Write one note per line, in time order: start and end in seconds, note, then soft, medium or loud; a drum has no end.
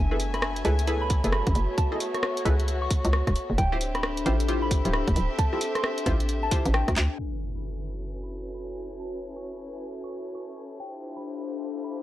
0.00 0.63 F#1 loud
0.00 1.44 A3 medium
0.00 3.55 A3 medium
0.00 3.54 B3 medium
0.00 3.58 F#4 medium
0.00 3.54 E5 medium
0.00 0.15 G#5 medium
0.00 1.76 G#5 medium
0.11 0.17 E4 medium
0.11 0.17 G#4 medium
0.11 0.17 A4 medium
0.11 0.17 B4 medium
0.11 3.58 C#5 medium
0.11 cross-stick soft
0.20 open hi-hat loud
0.34 0.50 B5 medium
0.34 cross-stick medium
0.34 closed hi-hat soft
0.42 cross-stick loud
0.56 closed hi-hat medium
0.65 1.12 C#2 medium
0.65 0.74 E4 medium
0.65 0.74 G#4 medium
0.65 0.74 A4 medium
0.65 0.74 B4 medium
0.65 open hi-hat medium
0.79 closed hi-hat medium
0.87 1.21 E4 loud
0.87 1.21 G#4 medium
0.87 1.21 A4 medium
0.87 1.21 B4 loud
0.87 closed hi-hat medium
1.02 1.17 B5 medium
1.10 1.22 B1 loud
1.10 kick loud
1.10 open hi-hat loud
1.24 1.42 F#1 medium
1.24 1.88 E4 medium
1.24 1.88 G#4 medium
1.24 1.88 A4 medium
1.24 1.88 B4 medium
1.24 closed hi-hat medium
1.32 1.55 B5 medium
1.32 cross-stick loud
1.47 1.54 A1 medium
1.47 kick loud
1.47 closed hi-hat medium
1.55 1.67 F#1 loud
1.55 open hi-hat medium
1.78 3.56 F#4 medium
1.78 1.96 A5 medium
1.78 kick loud
1.78 closed hi-hat medium
1.92 1.97 E4 medium
1.92 1.97 G#4 medium
1.92 1.97 A4 medium
1.92 1.97 D#5 medium
2.00 open hi-hat loud
2.14 2.30 C#6 medium
2.14 cross-stick medium
2.14 closed hi-hat soft
2.23 cross-stick loud
2.37 closed hi-hat medium
2.45 2.88 C#2 medium
2.45 2.55 E4 medium
2.45 2.55 G#4 medium
2.45 2.55 A4 medium
2.45 2.55 B4 loud
2.45 kick medium
2.45 open hi-hat loud
2.60 closed hi-hat medium
2.68 closed hi-hat medium
2.82 2.98 C#6 medium
2.91 kick loud
2.91 open hi-hat loud
3.05 3.23 C#2 loud
3.05 closed hi-hat medium
3.13 3.36 C#6 medium
3.13 cross-stick loud
3.27 3.34 E1 loud
3.27 kick medium
3.27 cross-stick medium
3.27 closed hi-hat medium
3.36 open hi-hat loud
3.50 3.57 F#1 medium
3.58 4.24 D1 loud
3.58 7.16 C4 medium
3.58 7.19 D4 medium
3.58 7.15 G4 medium
3.58 7.16 E5 medium
3.58 3.77 G5 loud
3.58 kick loud
3.58 closed hi-hat medium
3.72 3.78 E4 medium
3.72 3.78 F4 medium
3.72 3.78 G4 medium
3.72 7.93 A4 medium
3.72 3.78 C5 medium
3.72 cross-stick soft
3.81 open hi-hat loud
3.95 4.10 B5 loud
3.95 cross-stick medium
3.95 closed hi-hat soft
4.03 cross-stick loud
4.17 closed hi-hat medium
4.26 4.72 A1 medium
4.26 4.35 E4 medium
4.26 4.35 F4 medium
4.26 4.35 G4 medium
4.26 4.35 C5 medium
4.26 open hi-hat loud
4.40 closed hi-hat medium
4.48 4.82 E4 medium
4.48 4.82 F4 medium
4.48 4.82 G4 medium
4.48 4.82 C5 loud
4.48 closed hi-hat medium
4.62 4.78 B5 medium
4.71 4.83 G1 loud
4.71 kick loud
4.71 open hi-hat loud
4.85 5.03 D1 medium
4.85 5.49 E4 medium
4.85 5.49 F4 medium
4.85 5.49 G4 medium
4.85 5.49 C5 medium
4.85 closed hi-hat medium
4.93 5.16 B5 medium
4.93 cross-stick loud
5.08 5.15 F1 medium
5.08 kick loud
5.08 closed hi-hat medium
5.16 5.28 D1 loud
5.16 open hi-hat loud
5.39 5.57 A5 medium
5.39 kick loud
5.39 closed hi-hat medium
5.53 5.58 E4 medium
5.53 5.58 F4 medium
5.53 5.58 G4 medium
5.53 5.58 E5 medium
5.53 cross-stick soft
5.61 open hi-hat loud
5.75 5.91 C6 medium
5.75 cross-stick medium
5.75 closed hi-hat soft
5.84 cross-stick loud
5.98 closed hi-hat medium
6.06 6.49 A1 medium
6.06 6.16 E4 medium
6.06 6.16 F4 medium
6.06 6.16 G4 medium
6.06 6.16 C5 loud
6.06 kick medium
6.06 open hi-hat loud
6.20 closed hi-hat medium
6.29 closed hi-hat medium
6.43 6.59 A5 medium
6.51 7.18 E4 loud
6.51 7.18 F4 medium
6.51 7.18 G4 medium
6.51 7.18 C5 loud
6.51 kick loud
6.51 open hi-hat loud
6.65 6.84 A1 loud
6.65 closed hi-hat medium
6.74 6.97 G5 medium
6.74 cross-stick loud
6.88 6.95 D2 loud
6.88 kick medium
6.88 cross-stick medium
6.88 closed hi-hat medium
6.96 7.08 D2 loud
6.96 clap medium
6.96 open hi-hat loud
7.19 10.76 C#4 medium
7.19 12.03 E4 medium
7.19 10.80 F#4 medium
7.19 12.03 A4 medium
7.19 10.76 B4 medium
7.19 7.37 G#5 medium
7.19 10.76 G#5 medium
7.19 impact medium
7.55 7.71 B5 medium
7.62 10.80 C#5 medium
8.23 8.39 B5 medium
8.54 8.77 B5 medium
8.77 shaker medium
9.00 9.18 A5 medium
9.22 shaker medium
9.36 9.52 C#6 medium
9.36 shaker soft
9.67 shaker medium
10.04 10.19 C#6 medium
10.12 shaker medium
10.27 shaker soft
10.35 10.58 C#6 medium
10.35 shaker soft
10.57 shaker medium
10.71 shaker soft
10.80 12.03 D4 medium
10.80 12.03 F4 medium
10.80 12.03 G4 medium
10.80 12.03 C5 medium
10.80 10.98 G5 medium
10.94 12.03 A4 medium
11.03 shaker medium
11.17 11.32 B5 medium
11.17 shaker soft
11.48 shaker medium
11.62 shaker soft
11.70 shaker soft
11.84 12.00 B5 medium
11.93 shaker medium